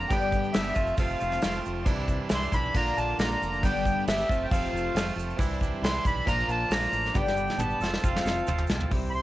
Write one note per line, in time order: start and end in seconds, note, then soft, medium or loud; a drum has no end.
0.00 0.11 F3 medium
0.00 0.11 A#3 medium
0.00 0.10 D4 medium
0.00 0.10 F4 medium
0.00 0.75 D5 medium
0.00 0.12 A#5 medium
0.00 shaker soft
0.08 0.43 G1 medium
0.08 0.54 G2 loud
0.08 0.55 D3 loud
0.08 0.33 G3 loud
0.08 0.32 B3 loud
0.08 0.32 D4 loud
0.08 0.76 G4 medium
0.08 0.55 G5 medium
0.08 0.76 B5 medium
0.08 kick loud
0.08 crash medium
0.08 shaker medium
0.13 0.30 G4 loud
0.21 shaker soft
0.32 0.53 G3 medium
0.32 0.53 B3 medium
0.32 0.54 D4 medium
0.32 0.55 G4 medium
0.32 kick medium
0.32 shaker medium
0.44 shaker soft
0.53 0.71 G1 medium
0.53 0.75 G3 medium
0.53 0.75 B3 medium
0.53 0.76 D4 medium
0.53 0.75 G4 medium
0.53 0.95 E5 medium
0.53 snare loud
0.53 crash medium
0.53 shaker medium
0.74 0.92 F1 medium
0.74 0.97 C3 medium
0.74 0.97 F3 medium
0.74 0.98 A3 medium
0.74 0.98 C4 medium
0.74 1.84 F4 medium
0.74 0.99 F4 medium
0.74 1.85 C5 medium
0.74 1.85 A5 medium
0.74 kick medium
0.74 shaker medium
0.78 0.96 F2 medium
0.87 shaker soft
0.97 1.14 F1 medium
0.97 1.42 F2 medium
0.97 1.42 C3 medium
0.97 1.21 F3 loud
0.97 1.21 A3 loud
0.97 1.19 C4 loud
0.97 1.18 F4 loud
0.97 1.60 F5 medium
0.97 kick loud
0.97 crash medium
0.97 shaker loud
1.09 shaker soft
1.20 1.37 F1 medium
1.20 1.41 F3 medium
1.20 1.42 A3 medium
1.20 1.42 C4 medium
1.20 1.43 F4 medium
1.20 shaker medium
1.32 snare soft
1.32 shaker soft
1.41 1.59 F1 medium
1.41 1.85 F3 medium
1.41 1.86 A3 medium
1.41 1.86 C4 medium
1.41 1.86 F4 medium
1.41 snare loud
1.41 crash medium
1.41 shaker loud
1.55 shaker soft
1.65 1.87 F1 medium
1.65 shaker medium
1.83 2.18 C2 medium
1.83 2.30 C3 loud
1.83 2.28 E3 medium
1.83 2.08 G3 loud
1.83 2.72 E4 medium
1.83 4.24 D5 medium
1.83 2.72 C6 medium
1.83 kick loud
1.83 crash medium
1.83 shaker loud
1.87 2.07 D4 loud
1.87 2.06 E4 loud
2.07 2.29 G3 medium
2.07 2.30 D4 medium
2.07 2.31 E4 medium
2.07 kick medium
2.07 shaker medium
2.29 2.47 C2 medium
2.29 2.73 E3 medium
2.29 2.54 G3 medium
2.29 2.52 D4 medium
2.29 2.51 E4 medium
2.29 snare loud
2.29 crash medium
2.29 shaker loud
2.34 2.55 C6 loud
2.43 shaker soft
2.52 2.68 B1 medium
2.52 2.75 G3 medium
2.52 2.74 D4 medium
2.52 2.73 E4 medium
2.52 2.76 B5 loud
2.52 kick medium
2.52 shaker medium
2.74 2.91 A#1 medium
2.74 3.19 A#2 medium
2.74 3.19 D3 loud
2.74 2.98 A#3 medium
2.74 2.97 D4 loud
2.74 3.62 F4 medium
2.74 2.95 F4 loud
2.74 3.62 A#5 medium
2.74 2.98 A#5 loud
2.74 kick loud
2.74 crash medium
2.74 shaker medium
2.87 shaker soft
2.97 3.13 A#1 medium
2.97 3.20 A#3 medium
2.97 3.21 D4 medium
2.97 3.22 F4 medium
2.97 3.18 A5 loud
2.97 shaker medium
3.18 3.34 A#1 medium
3.18 3.62 D3 medium
3.18 3.63 A#3 medium
3.18 3.63 D4 medium
3.18 3.64 A#5 medium
3.18 snare loud
3.18 crash medium
3.18 shaker medium
3.23 3.64 F4 medium
3.32 shaker soft
3.40 3.63 F1 medium
3.40 3.64 D4 soft
3.40 3.62 F4 soft
3.40 shaker medium
3.44 3.64 A#3 soft
3.54 shaker soft
3.63 3.95 G1 loud
3.63 4.07 G2 loud
3.63 4.08 D3 loud
3.63 3.87 G3 loud
3.63 3.86 B3 loud
3.63 3.85 D4 loud
3.63 4.29 G4 medium
3.63 3.84 G4 loud
3.63 4.04 G5 loud
3.63 4.28 B5 medium
3.63 kick loud
3.63 crash medium
3.63 shaker medium
3.85 4.05 G3 medium
3.85 4.07 B3 medium
3.85 4.07 D4 medium
3.85 4.08 G4 medium
3.85 kick medium
3.85 shaker medium
4.07 4.23 G1 medium
4.07 4.27 G3 medium
4.07 4.28 B3 medium
4.07 4.28 D4 medium
4.07 4.29 G4 medium
4.07 4.46 E5 medium
4.07 snare loud
4.07 crash medium
4.07 shaker medium
4.20 shaker soft
4.29 4.45 F1 medium
4.29 4.50 F2 medium
4.29 4.51 C3 medium
4.29 4.51 F3 medium
4.29 4.51 A3 medium
4.29 4.52 C4 loud
4.29 4.52 F4 medium
4.29 5.38 F4 medium
4.29 5.38 C5 medium
4.29 5.38 A5 medium
4.29 kick medium
4.29 shaker medium
4.43 4.50 G5 medium
4.51 4.67 F1 medium
4.51 4.95 F2 medium
4.51 4.95 C3 loud
4.51 4.74 F3 loud
4.51 4.73 A3 medium
4.51 4.73 C4 loud
4.51 4.71 F4 loud
4.51 5.13 F5 medium
4.51 kick loud
4.51 crash medium
4.51 shaker loud
4.66 shaker soft
4.72 4.88 F1 medium
4.72 4.93 F3 medium
4.72 4.94 A3 medium
4.72 4.95 C4 medium
4.72 4.96 F4 medium
4.77 shaker medium
4.95 5.11 F1 loud
4.95 5.37 F3 medium
4.95 5.38 A3 medium
4.95 5.38 C4 medium
4.95 5.38 F4 medium
4.95 snare loud
4.95 crash medium
4.95 shaker loud
5.09 shaker soft
5.16 5.32 F1 medium
5.16 5.39 F3 soft
5.16 5.40 A3 soft
5.16 5.39 C4 soft
5.16 5.39 F4 medium
5.16 shaker medium
5.30 shaker soft
5.37 5.71 C2 loud
5.37 5.82 C3 loud
5.37 5.81 E3 loud
5.37 5.62 G3 medium
5.37 5.61 D4 loud
5.37 6.26 E4 medium
5.37 5.60 E4 loud
5.37 7.78 D5 medium
5.37 6.26 C6 medium
5.37 kick loud
5.37 crash medium
5.41 shaker loud
5.61 5.82 G3 medium
5.61 5.83 D4 medium
5.61 5.84 E4 medium
5.61 kick medium
5.61 shaker medium
5.82 5.98 C2 medium
5.82 6.25 E3 medium
5.82 6.06 G3 medium
5.82 6.05 D4 medium
5.82 6.04 E4 medium
5.82 6.06 C6 loud
5.82 snare loud
5.82 crash medium
5.82 shaker loud
5.95 shaker soft
6.05 6.21 B1 medium
6.05 6.27 G3 medium
6.05 6.26 D4 medium
6.05 6.26 E4 medium
6.05 6.28 B5 loud
6.05 kick loud
6.05 shaker medium
6.25 6.43 A#1 medium
6.25 6.70 A#2 medium
6.25 6.69 F3 loud
6.25 6.50 A#3 medium
6.25 6.49 D4 loud
6.25 7.14 F4 medium
6.25 6.47 F4 loud
6.25 7.14 A#5 medium
6.25 6.50 A#5 loud
6.25 kick loud
6.25 crash medium
6.25 shaker loud
6.38 shaker soft
6.48 6.64 A#1 loud
6.48 6.71 A#3 medium
6.48 6.72 D4 medium
6.48 6.73 F4 medium
6.48 6.72 A5 loud
6.48 shaker medium
6.70 6.86 A#1 medium
6.70 7.13 F3 medium
6.70 7.14 A#3 medium
6.70 7.14 D4 medium
6.70 7.15 F4 medium
6.70 7.16 A#5 loud
6.70 snare loud
6.70 crash medium
6.70 shaker loud
6.82 shaker soft
6.92 7.08 A1 medium
6.92 shaker medium
7.03 snare soft
7.03 shaker soft
7.14 7.47 G1 medium
7.14 7.59 G2 medium
7.14 7.59 D3 loud
7.14 7.39 G3 loud
7.14 7.38 B3 loud
7.14 7.37 D4 medium
7.14 7.81 G4 medium
7.14 7.36 G4 loud
7.14 7.61 G5 medium
7.14 7.81 B5 medium
7.14 kick loud
7.14 high tom medium
7.14 shaker medium
7.27 snare medium
7.27 shaker soft
7.37 7.58 G3 medium
7.37 7.59 B3 medium
7.37 7.60 D4 medium
7.37 7.61 G4 medium
7.37 shaker medium
7.47 snare medium
7.47 shaker soft
7.58 7.74 G1 medium
7.58 7.80 G3 medium
7.58 7.80 B3 medium
7.58 7.81 D4 medium
7.58 8.04 A5 medium
7.58 mid tom medium
7.58 shaker loud
7.62 7.81 G4 medium
7.70 shaker soft
7.80 7.96 F1 medium
7.80 8.02 A3 soft
7.80 8.02 C4 medium
7.80 8.91 F4 medium
7.80 8.04 F4 medium
7.80 8.04 A4 medium
7.80 8.91 A5 medium
7.80 snare medium
7.80 shaker medium
7.84 8.01 F3 medium
7.84 8.89 C5 medium
7.92 snare medium
7.92 shaker soft
8.02 8.20 F1 medium
8.02 8.46 F2 medium
8.02 8.47 C3 medium
8.02 8.45 F3 medium
8.02 8.46 A3 medium
8.02 8.27 C4 loud
8.02 8.25 F4 medium
8.02 8.24 A4 loud
8.02 8.65 F5 medium
8.02 kick loud
8.02 shaker medium
8.16 snare medium
8.25 8.41 F1 medium
8.25 8.46 C4 medium
8.25 8.47 F4 medium
8.25 8.48 A4 medium
8.25 snare medium
8.25 shaker medium
8.37 shaker soft
8.47 8.63 F1 medium
8.47 8.90 F3 medium
8.47 8.69 A3 medium
8.47 8.90 C4 medium
8.47 8.91 F4 medium
8.47 8.91 A4 medium
8.47 floor tom loud
8.47 shaker loud
8.58 floor tom medium
8.58 shaker soft
8.67 8.85 B1 medium
8.67 8.91 A3 soft
8.67 8.91 C4 soft
8.67 8.91 F4 soft
8.67 snare loud
8.67 shaker medium
8.72 8.91 F3 soft
8.80 floor tom medium
8.80 shaker soft
8.90 9.22 C2 medium
8.90 9.22 C3 medium
8.90 9.13 E3 medium
8.90 9.13 G3 medium
8.90 9.14 C4 medium
8.90 9.22 E4 medium
8.90 9.13 E4 medium
8.90 9.22 C5 medium
8.90 9.22 G5 medium
8.90 kick loud
8.90 open hi-hat medium
9.10 9.13 B5 medium
9.10 open hi-hat medium
9.14 9.22 G3 soft
9.14 9.22 C4 soft
9.14 9.22 E4 medium
9.14 9.22 C6 loud